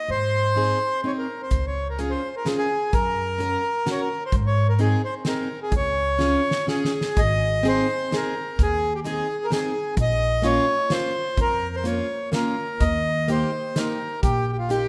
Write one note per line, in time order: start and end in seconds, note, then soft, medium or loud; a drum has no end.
0.00 0.10 D#5 medium
0.08 0.70 G#2 medium
0.08 1.01 C5 loud
0.55 0.77 C4 soft
0.55 0.78 D#4 soft
0.55 0.78 G#4 medium
1.04 1.26 C4 soft
1.04 1.26 D#4 soft
1.04 1.27 G#4 medium
1.04 1.12 C#5 medium
1.18 1.42 A#4 medium
1.42 1.66 C5 medium
1.51 2.13 C#2 medium
1.51 kick medium
1.51 closed hi-hat soft
1.67 1.88 C#5 medium
1.90 2.00 A#4 medium
1.99 2.21 C#4 medium
1.99 2.21 F4 soft
1.99 2.11 G#4 medium
1.99 2.22 G#4 medium
1.99 closed hi-hat soft
2.10 2.35 C5 medium
2.36 2.48 A#4 medium
2.45 2.67 C#4 soft
2.45 2.68 F4 soft
2.45 2.56 G#4 medium
2.45 2.68 G#4 medium
2.45 snare soft
2.45 closed hi-hat soft
2.58 2.94 G#4 medium
2.93 3.54 F#2 medium
2.93 3.90 A#4 medium
2.93 kick medium
2.93 closed hi-hat soft
3.38 3.61 C#4 medium
3.38 3.61 F#4 medium
3.38 3.62 A#4 medium
3.38 closed hi-hat soft
3.86 4.07 C#4 soft
3.86 4.08 F#4 soft
3.86 4.08 A#4 medium
3.86 snare soft
3.86 closed hi-hat soft
3.91 4.01 C#5 medium
4.01 4.24 A#4 medium
4.26 4.35 C5 medium
4.32 4.93 G#2 medium
4.32 kick medium
4.32 closed hi-hat soft
4.47 4.67 C#5 medium
4.69 4.80 A#4 medium
4.79 5.00 C4 medium
4.79 5.01 D#4 soft
4.79 5.01 G#4 medium
4.79 5.02 G#4 medium
4.79 closed hi-hat soft
5.04 5.14 C5 medium
5.25 5.47 C4 soft
5.25 5.47 D#4 soft
5.25 5.48 G#4 soft
5.25 5.60 A#4 medium
5.25 snare medium
5.25 closed hi-hat soft
5.63 5.74 G#4 medium
5.71 6.34 C#2 medium
5.71 kick medium
5.71 closed hi-hat soft
5.77 6.66 C#5 medium
6.19 6.41 C#4 medium
6.19 6.41 F4 medium
6.19 6.42 G#4 medium
6.19 snare soft
6.51 snare soft
6.67 6.90 C#4 medium
6.67 6.91 F4 soft
6.67 6.91 G#4 medium
6.67 7.20 G#4 medium
6.67 snare soft
6.85 snare soft
7.01 snare soft
7.17 7.79 G#1 medium
7.17 7.67 D#5 loud
7.17 kick medium
7.17 closed hi-hat soft
7.63 7.86 C4 medium
7.63 7.86 D#4 medium
7.63 7.87 G#4 medium
7.63 closed hi-hat soft
7.68 8.15 C5 medium
8.11 8.33 C4 soft
8.11 8.34 D#4 soft
8.11 8.34 G#4 medium
8.11 snare soft
8.11 closed hi-hat soft
8.16 8.62 A#4 medium
8.59 9.19 D#2 medium
8.59 8.93 G#4 medium
8.59 kick medium
8.59 closed hi-hat soft
8.95 9.00 G4 medium
9.04 9.26 C4 medium
9.04 9.26 D#4 soft
9.04 9.46 G#4 medium
9.04 9.27 G#4 medium
9.04 closed hi-hat soft
9.44 9.51 A#4 medium
9.51 9.72 C4 medium
9.51 9.73 D#4 soft
9.51 9.73 G#4 medium
9.51 9.95 G#4 medium
9.51 snare medium
9.51 closed hi-hat soft
9.97 10.57 A#1 medium
9.97 kick medium
9.97 closed hi-hat medium
10.01 10.47 D#5 loud
10.42 10.64 A#3 medium
10.42 10.65 C#4 medium
10.42 10.65 F4 medium
10.42 10.92 C#5 medium
10.42 closed hi-hat soft
10.90 11.12 A#3 medium
10.90 11.12 C#4 soft
10.90 11.12 F4 medium
10.90 11.40 C5 medium
10.90 snare medium
10.90 closed hi-hat soft
11.37 11.99 F2 medium
11.37 11.76 A#4 medium
11.37 kick medium
11.37 closed hi-hat soft
11.76 11.86 C5 medium
11.84 12.06 A#3 medium
11.84 12.06 C#4 soft
11.84 12.07 F4 medium
11.84 12.30 C#5 medium
11.84 closed hi-hat soft
12.32 12.54 A#3 soft
12.32 12.55 C#4 soft
12.32 12.55 F4 soft
12.32 12.83 A#4 medium
12.32 snare medium
12.32 closed hi-hat soft
12.80 13.42 D#2 medium
12.80 13.30 D#5 medium
12.80 kick medium
12.80 closed hi-hat soft
13.28 13.49 A#3 soft
13.28 13.50 D#4 medium
13.28 13.50 G4 medium
13.28 13.78 C5 medium
13.28 closed hi-hat soft
13.76 13.98 A#3 medium
13.76 13.98 D#4 soft
13.76 13.98 G4 medium
13.76 14.21 A#4 medium
13.76 snare medium
13.76 closed hi-hat soft
14.23 14.83 A#1 medium
14.23 14.51 G4 medium
14.23 kick medium
14.23 closed hi-hat soft
14.53 14.57 G4 medium
14.59 14.70 F4 medium
14.69 14.88 A#3 medium
14.69 14.88 D#4 soft
14.69 14.88 G4 medium
14.69 closed hi-hat soft